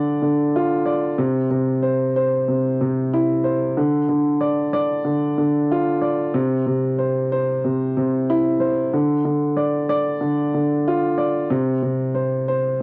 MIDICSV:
0, 0, Header, 1, 2, 480
1, 0, Start_track
1, 0, Key_signature, -1, "minor"
1, 0, Tempo, 645161
1, 884, Time_signature, 4, 2, 24, 8
1, 9540, End_track
2, 0, Start_track
2, 0, Title_t, "Grand piano"
2, 0, Program_c, 0, 0
2, 0, Control_c, 0, 64, 127
2, 0, Note_on_c, 0, 50, 77
2, 0, Note_on_c, 0, 74, 90
2, 154, Note_off_c, 0, 50, 0
2, 165, Note_on_c, 0, 50, 76
2, 415, Note_on_c, 0, 65, 96
2, 626, Note_off_c, 0, 74, 0
2, 637, Note_on_c, 0, 74, 78
2, 880, Note_off_c, 0, 74, 0
2, 880, Note_on_c, 0, 48, 96
2, 885, Note_off_c, 0, 50, 0
2, 889, Note_off_c, 0, 65, 0
2, 895, Control_c, 0, 64, 0
2, 1017, Control_c, 0, 64, 127
2, 1107, Note_off_c, 0, 48, 0
2, 1119, Note_on_c, 0, 48, 75
2, 1357, Note_on_c, 0, 72, 81
2, 1596, Note_off_c, 0, 72, 0
2, 1607, Note_on_c, 0, 72, 92
2, 1836, Note_off_c, 0, 48, 0
2, 1847, Note_on_c, 0, 48, 69
2, 2079, Note_off_c, 0, 48, 0
2, 2090, Note_on_c, 0, 48, 75
2, 2332, Note_on_c, 0, 64, 92
2, 2547, Note_off_c, 0, 72, 0
2, 2558, Note_on_c, 0, 72, 80
2, 2801, Note_off_c, 0, 72, 0
2, 2806, Note_on_c, 0, 50, 89
2, 2807, Note_off_c, 0, 48, 0
2, 2808, Note_off_c, 0, 64, 0
2, 2814, Control_c, 0, 64, 0
2, 2966, Control_c, 0, 64, 127
2, 3031, Note_off_c, 0, 50, 0
2, 3042, Note_on_c, 0, 50, 74
2, 3279, Note_on_c, 0, 74, 79
2, 3510, Note_off_c, 0, 74, 0
2, 3521, Note_on_c, 0, 74, 90
2, 3743, Note_off_c, 0, 50, 0
2, 3754, Note_on_c, 0, 50, 75
2, 3991, Note_off_c, 0, 50, 0
2, 4002, Note_on_c, 0, 50, 78
2, 4252, Note_on_c, 0, 65, 94
2, 4464, Note_off_c, 0, 74, 0
2, 4475, Note_on_c, 0, 74, 81
2, 4717, Note_on_c, 0, 48, 94
2, 4720, Note_off_c, 0, 74, 0
2, 4723, Note_off_c, 0, 50, 0
2, 4728, Note_off_c, 0, 65, 0
2, 4733, Control_c, 0, 64, 0
2, 4868, Control_c, 0, 64, 127
2, 4946, Note_off_c, 0, 48, 0
2, 4958, Note_on_c, 0, 48, 76
2, 5196, Note_on_c, 0, 72, 82
2, 5434, Note_off_c, 0, 72, 0
2, 5446, Note_on_c, 0, 72, 91
2, 5676, Note_off_c, 0, 48, 0
2, 5687, Note_on_c, 0, 48, 72
2, 5918, Note_off_c, 0, 48, 0
2, 5929, Note_on_c, 0, 48, 75
2, 6173, Note_on_c, 0, 64, 95
2, 6387, Note_off_c, 0, 72, 0
2, 6398, Note_on_c, 0, 72, 78
2, 6641, Note_off_c, 0, 72, 0
2, 6647, Note_off_c, 0, 48, 0
2, 6647, Note_on_c, 0, 50, 91
2, 6649, Note_off_c, 0, 64, 0
2, 6655, Control_c, 0, 64, 0
2, 6797, Control_c, 0, 64, 127
2, 6871, Note_off_c, 0, 50, 0
2, 6882, Note_on_c, 0, 50, 73
2, 7118, Note_on_c, 0, 74, 82
2, 7350, Note_off_c, 0, 74, 0
2, 7361, Note_on_c, 0, 74, 94
2, 7584, Note_off_c, 0, 50, 0
2, 7595, Note_on_c, 0, 50, 75
2, 7833, Note_off_c, 0, 50, 0
2, 7845, Note_on_c, 0, 50, 76
2, 8092, Note_on_c, 0, 65, 91
2, 8305, Note_off_c, 0, 74, 0
2, 8316, Note_on_c, 0, 74, 82
2, 8558, Note_on_c, 0, 48, 95
2, 8560, Note_off_c, 0, 74, 0
2, 8564, Note_off_c, 0, 50, 0
2, 8568, Note_off_c, 0, 65, 0
2, 8573, Control_c, 0, 64, 0
2, 8719, Control_c, 0, 64, 127
2, 8786, Note_off_c, 0, 48, 0
2, 8798, Note_on_c, 0, 48, 76
2, 9036, Note_on_c, 0, 72, 77
2, 9275, Note_off_c, 0, 72, 0
2, 9286, Note_on_c, 0, 72, 92
2, 9515, Note_off_c, 0, 48, 0
2, 9540, Note_off_c, 0, 72, 0
2, 9540, End_track
0, 0, End_of_file